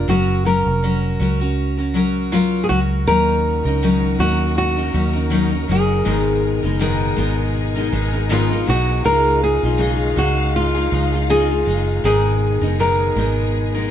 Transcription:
0.08 F#1 F#3 C#4 F#4 A#4
0.45 F#3 C#4 F#4 A#4
0.66 F1
0.83 F#3 C#4 F#4 A#4
1.20 C#2 F#3 C#4 F#4 A#4
1.40 C#4 F#4 A#4
1.77 C#4 F#4 A#4
1.94 F#3 C#4 F#4 A#4
2.32 F#3 C#4 F4 A#4
2.64 G#4
2.69 C#2 F#3 C#4 F#4 A#4
3.06 D#2 C#3 D#3 F#3 C#4 D#4 F#4 A#4
3.65 C#2 C#4 D#4 A#4
3.83 D#3 F#3 C#4 D#4 A#4
4.19 D#2 F#3 C#4 D#4 F#4 A#4
4.58 F#4
4.76 C#4 D#4 A#4
4.93 D#2 F#3 C#4 D#4 A#4
5.13 C#4 D#4 A#4
5.30 D#3 F#3 C#4 D#4 A#4
5.51 C#4 D#4 A#4
5.68 F#1 F#3 C#4 D#4 G#4 A#4
6.05 G#1 G#2 B2 D#3 G#3 B3 D#4 G#4 A#4
6.63 F#1 G#3 B3 D#4 A#4
6.79 G#2 D#3 G#3 B3 D#4 A#4
7.16 G#1 G#3 B3 D#4 A#4
7.76 G#3 B3 D#4 A#4
7.92 G#1 G#3 B3 D#4 A#4
8.13 G#3 B3 D#4 A#4
8.29 G#2 D#3 G#3 B3 D#4 F4 A#4
8.50 G#3 B3 D#4 A#4
8.66 B1 G#3 B3 D#4 F#4 A#4
9.04 C#2 C#3 D#3 G#3 D#4 F4 G#4 A#4 F5
9.44 G#4
9.63 B1 D#4 F4 G#4
9.78 C#3 G#3 D#4 F4 G#4
10.16 C#2 G#3 D#4 F#4 G#4
10.56 F4
10.74 D#4 F4 G#4
10.91 C#2 G#3 D#4 F4 G#4
11.12 D#4 F4 G#4
11.30 C#3 G#3 D#4 F4 G#4
11.49 D#4 F4 G#4
11.66 F#1 G#3 D#4 F4 G#4
12.03 G#1 G#2 B2 D#3 G#3 B3 D#4 G#4 A#4
12.62 F#1 G#3 B3 D#4 A#4
12.79 G#2 D#3 G#3 B3 D#4 A#4
13.16 G#1 G#3 B3 D#4 A#4
13.75 G#3 B3 D#4 A#4

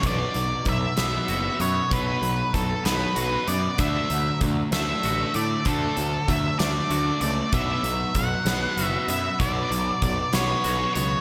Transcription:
0.03 B1 B2 F#3 B3 D5, kick, closed hi-hat
0.34 B1 B2 F#3, closed hi-hat
0.65 B1 B2 F#3 E5, kick, closed hi-hat
0.97 B1 B2 F#3 B3, snare, closed hi-hat
1.28 F#1 F#4, closed hi-hat
1.59 F#2 B2 F#3 B3 C#5, closed hi-hat
1.91 B1 B2 F#3 B3 B4, kick, closed hi-hat
2.22 B1 B2 F#3, closed hi-hat
2.54 B1 B2 F#3 A4, kick, closed hi-hat
2.85 B1 B2 F#3 B3 B4, snare, closed hi-hat
3.15 B1 F#4, closed hi-hat
3.47 F#2 B2 F#3 B3 D5, closed hi-hat
3.78 D2 D3 A3 D4 E5, kick, closed hi-hat
4.10 D2 D3 F#3 A3, closed hi-hat
4.41 D2 D3 F#3 A3, kick, closed hi-hat
4.72 D2 D3 A3 D4 E5, snare, closed hi-hat
5.03 A1 F#4, closed hi-hat
5.34 A2 D3 A3 D5, closed hi-hat
5.65 D2 D3 A3 D4 A4, kick, closed hi-hat
5.97 D2 D3 F#3 A3, closed hi-hat
6.28 D2 D3 F#3 A3 E5, kick, closed hi-hat
6.59 D2 D3 A3 D4 D5, snare, closed hi-hat
6.90 D2 F#4, closed hi-hat
7.21 C#2 D3 A3 D5, closed hi-hat
7.53 B1 B2 F#3 B3 E5, kick, closed hi-hat
7.83 B1 B2 F#3, closed hi-hat
8.15 B1 B2 F#3 F#5, kick, closed hi-hat
8.45 B1 B2 F#3 B3, snare, closed hi-hat
8.77 F#1 F#4, closed hi-hat
8.84 E5
9.08 F#2 B2 F#3 B3 E5, closed hi-hat
9.39 B1 B2 F#3 B3 D5, kick, closed hi-hat
9.71 B1 B2 F#3, closed hi-hat
10.02 B1 B2 F#3 D5, kick, closed hi-hat
10.33 B1 B2 F#3 B3 C#5, snare, closed hi-hat
10.64 B1 F#4, closed hi-hat
10.95 C#2 B2 F#3 B3 C#5, closed hi-hat

